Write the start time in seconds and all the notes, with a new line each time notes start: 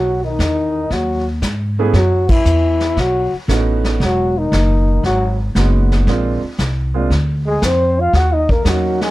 Already playing: B1 F#3 F#4
0.24 D#3 D#4
0.39 E2, kick, snare, hi-hat pedal
0.90 D#2 F#3 F#4, brush sweep, kick, snare
1.42 G#2, kick, snare, hi-hat pedal
1.79 A3 B3 C#4 E4 G#4
1.93 F#2 F#3 F#4, brush sweep, kick, snare
2.29 E3 E4, kick, crash
2.45 E2, hi-hat pedal
2.80 snare
2.97 B1 F#3 F#4, brush sweep, kick, snare
3.33 muted upright bass stroke
3.48 A1 A3 B3 C#4 D#4 F#4, kick, snare, hi-hat pedal
3.84 snare
4.00 E1 F#3 F#4, brush sweep, kick, snare
4.38 D#3 D#4
4.52 F#1, kick, snare, hi-hat pedal
5.03 G#1 F#3 F#4, brush sweep, kick, snare
5.55 F#1 G#3 B3 C#4 D#4 F#4, kick, snare, hi-hat pedal
5.92 snare
6.07 A#1 G#3 A#3 C4 D4 F4, brush sweep, kick, snare
6.43 muted upright bass stroke
6.58 C2, kick, snare, hi-hat pedal
6.94 G#3 A#3 C4 D4 F4
7.10 D2, brush sweep, kick, snare
7.46 G#3 G#4
7.62 F2 C4 C5, kick, snare, hi-hat pedal
7.99 F4 F5
8.13 D#2 F#4 F#5, brush sweep, kick, snare
8.33 D#4 D#5
8.49 A#3 A#4, kick
8.65 E2 F#3 A#3 C#4 D#4 F#4, kick, snare, hi-hat pedal
9.01 G#3 G#4, snare